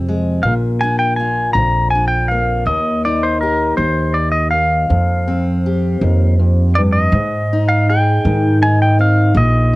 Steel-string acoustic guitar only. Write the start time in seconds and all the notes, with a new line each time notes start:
Already playing: F2 C3 F3 C4 G4
0.09 G#3
0.45 A#2
0.83 D4
1.20 F4
1.58 F2
1.95 D4
2.31 A#3
2.68 D#2
3.06 D#4
3.43 G4
4.53 D#2
4.89 F2
5.28 C4
5.66 G4
6.01 D#2
6.39 F2
6.78 G2
7.14 G#2
7.53 D#4
7.90 G#4
8.25 D#3
8.62 D#4
8.99 C4
9.36 A#2